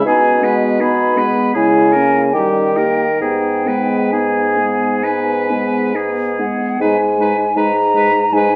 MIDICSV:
0, 0, Header, 1, 6, 480
1, 0, Start_track
1, 0, Key_signature, 5, "minor"
1, 0, Tempo, 747198
1, 39, Time_signature, 4, 2, 24, 8
1, 998, Tempo, 793651
1, 1478, Tempo, 864553
1, 1958, Tempo, 909091
1, 3398, Tempo, 865801
1, 3878, Tempo, 765306
1, 4976, End_track
2, 0, Start_track
2, 0, Title_t, "Flute"
2, 0, Program_c, 0, 73
2, 47, Note_on_c, 0, 80, 74
2, 348, Note_off_c, 0, 80, 0
2, 526, Note_on_c, 0, 83, 70
2, 1004, Note_on_c, 0, 80, 65
2, 1013, Note_off_c, 0, 83, 0
2, 1470, Note_on_c, 0, 79, 53
2, 1479, Note_off_c, 0, 80, 0
2, 1952, Note_off_c, 0, 79, 0
2, 1955, Note_on_c, 0, 79, 56
2, 2442, Note_on_c, 0, 80, 42
2, 2450, Note_off_c, 0, 79, 0
2, 3402, Note_off_c, 0, 80, 0
2, 3649, Note_on_c, 0, 78, 51
2, 3885, Note_on_c, 0, 80, 59
2, 3895, Note_off_c, 0, 78, 0
2, 4359, Note_on_c, 0, 82, 73
2, 4368, Note_off_c, 0, 80, 0
2, 4834, Note_on_c, 0, 80, 78
2, 4843, Note_off_c, 0, 82, 0
2, 4976, Note_off_c, 0, 80, 0
2, 4976, End_track
3, 0, Start_track
3, 0, Title_t, "Oboe"
3, 0, Program_c, 1, 68
3, 43, Note_on_c, 1, 68, 50
3, 282, Note_on_c, 1, 71, 43
3, 291, Note_off_c, 1, 68, 0
3, 518, Note_on_c, 1, 68, 47
3, 528, Note_off_c, 1, 71, 0
3, 757, Note_on_c, 1, 71, 42
3, 767, Note_off_c, 1, 68, 0
3, 985, Note_off_c, 1, 71, 0
3, 989, Note_on_c, 1, 68, 43
3, 1222, Note_on_c, 1, 70, 41
3, 1231, Note_off_c, 1, 68, 0
3, 1398, Note_off_c, 1, 70, 0
3, 1472, Note_on_c, 1, 67, 37
3, 1709, Note_on_c, 1, 70, 33
3, 1718, Note_off_c, 1, 67, 0
3, 1957, Note_off_c, 1, 70, 0
3, 1960, Note_on_c, 1, 68, 37
3, 2202, Note_on_c, 1, 71, 32
3, 2210, Note_off_c, 1, 68, 0
3, 2438, Note_off_c, 1, 71, 0
3, 2442, Note_on_c, 1, 68, 42
3, 2922, Note_on_c, 1, 71, 43
3, 2930, Note_off_c, 1, 68, 0
3, 3409, Note_on_c, 1, 68, 35
3, 3418, Note_off_c, 1, 71, 0
3, 3878, Note_off_c, 1, 68, 0
3, 3881, Note_on_c, 1, 71, 47
3, 3982, Note_off_c, 1, 71, 0
3, 4133, Note_on_c, 1, 71, 41
3, 4233, Note_off_c, 1, 71, 0
3, 4360, Note_on_c, 1, 71, 46
3, 4460, Note_off_c, 1, 71, 0
3, 4603, Note_on_c, 1, 71, 41
3, 4703, Note_off_c, 1, 71, 0
3, 4854, Note_on_c, 1, 71, 43
3, 4955, Note_off_c, 1, 71, 0
3, 4976, End_track
4, 0, Start_track
4, 0, Title_t, "Clarinet"
4, 0, Program_c, 2, 71
4, 41, Note_on_c, 2, 63, 49
4, 278, Note_on_c, 2, 59, 43
4, 287, Note_off_c, 2, 63, 0
4, 513, Note_on_c, 2, 63, 47
4, 523, Note_off_c, 2, 59, 0
4, 757, Note_on_c, 2, 59, 41
4, 767, Note_off_c, 2, 63, 0
4, 996, Note_off_c, 2, 59, 0
4, 1000, Note_on_c, 2, 64, 49
4, 1240, Note_on_c, 2, 61, 41
4, 1249, Note_off_c, 2, 64, 0
4, 1471, Note_off_c, 2, 61, 0
4, 1475, Note_on_c, 2, 63, 40
4, 1711, Note_on_c, 2, 67, 35
4, 1719, Note_off_c, 2, 63, 0
4, 1884, Note_off_c, 2, 67, 0
4, 1957, Note_on_c, 2, 63, 36
4, 2195, Note_on_c, 2, 59, 34
4, 2203, Note_off_c, 2, 63, 0
4, 2440, Note_on_c, 2, 63, 34
4, 2448, Note_off_c, 2, 59, 0
4, 2675, Note_on_c, 2, 59, 31
4, 2683, Note_off_c, 2, 63, 0
4, 2922, Note_off_c, 2, 59, 0
4, 2925, Note_on_c, 2, 63, 36
4, 3167, Note_on_c, 2, 59, 33
4, 3175, Note_off_c, 2, 63, 0
4, 3400, Note_on_c, 2, 63, 33
4, 3408, Note_off_c, 2, 59, 0
4, 3650, Note_on_c, 2, 59, 30
4, 3659, Note_off_c, 2, 63, 0
4, 3882, Note_off_c, 2, 59, 0
4, 3884, Note_on_c, 2, 63, 46
4, 3985, Note_off_c, 2, 63, 0
4, 4127, Note_on_c, 2, 63, 44
4, 4227, Note_off_c, 2, 63, 0
4, 4354, Note_on_c, 2, 63, 41
4, 4455, Note_off_c, 2, 63, 0
4, 4593, Note_on_c, 2, 63, 42
4, 4693, Note_off_c, 2, 63, 0
4, 4834, Note_on_c, 2, 63, 48
4, 4934, Note_off_c, 2, 63, 0
4, 4976, End_track
5, 0, Start_track
5, 0, Title_t, "French horn"
5, 0, Program_c, 3, 60
5, 40, Note_on_c, 3, 59, 46
5, 279, Note_on_c, 3, 56, 48
5, 289, Note_off_c, 3, 59, 0
5, 527, Note_on_c, 3, 59, 41
5, 537, Note_off_c, 3, 56, 0
5, 756, Note_on_c, 3, 56, 39
5, 766, Note_off_c, 3, 59, 0
5, 994, Note_off_c, 3, 56, 0
5, 998, Note_on_c, 3, 56, 43
5, 1239, Note_on_c, 3, 58, 38
5, 1248, Note_off_c, 3, 56, 0
5, 1479, Note_off_c, 3, 58, 0
5, 1483, Note_on_c, 3, 55, 41
5, 1719, Note_on_c, 3, 58, 35
5, 1727, Note_off_c, 3, 55, 0
5, 1888, Note_off_c, 3, 58, 0
5, 1959, Note_on_c, 3, 59, 34
5, 2205, Note_on_c, 3, 56, 33
5, 2213, Note_off_c, 3, 59, 0
5, 2446, Note_on_c, 3, 59, 31
5, 2454, Note_off_c, 3, 56, 0
5, 2688, Note_on_c, 3, 56, 29
5, 2696, Note_off_c, 3, 59, 0
5, 2927, Note_off_c, 3, 56, 0
5, 2930, Note_on_c, 3, 59, 31
5, 3174, Note_on_c, 3, 56, 30
5, 3182, Note_off_c, 3, 59, 0
5, 3407, Note_on_c, 3, 59, 34
5, 3415, Note_off_c, 3, 56, 0
5, 3654, Note_on_c, 3, 56, 29
5, 3662, Note_off_c, 3, 59, 0
5, 3871, Note_off_c, 3, 56, 0
5, 3875, Note_on_c, 3, 56, 42
5, 3975, Note_off_c, 3, 56, 0
5, 4113, Note_on_c, 3, 56, 41
5, 4214, Note_off_c, 3, 56, 0
5, 4354, Note_on_c, 3, 56, 38
5, 4454, Note_off_c, 3, 56, 0
5, 4592, Note_on_c, 3, 56, 40
5, 4692, Note_off_c, 3, 56, 0
5, 4829, Note_on_c, 3, 56, 44
5, 4929, Note_off_c, 3, 56, 0
5, 4976, End_track
6, 0, Start_track
6, 0, Title_t, "Bassoon"
6, 0, Program_c, 4, 70
6, 34, Note_on_c, 4, 47, 60
6, 808, Note_off_c, 4, 47, 0
6, 998, Note_on_c, 4, 49, 51
6, 1477, Note_on_c, 4, 51, 44
6, 1485, Note_off_c, 4, 49, 0
6, 1950, Note_off_c, 4, 51, 0
6, 1954, Note_on_c, 4, 44, 39
6, 3669, Note_off_c, 4, 44, 0
6, 3873, Note_on_c, 4, 44, 56
6, 4300, Note_off_c, 4, 44, 0
6, 4353, Note_on_c, 4, 44, 55
6, 4779, Note_off_c, 4, 44, 0
6, 4839, Note_on_c, 4, 44, 58
6, 4976, Note_off_c, 4, 44, 0
6, 4976, End_track
0, 0, End_of_file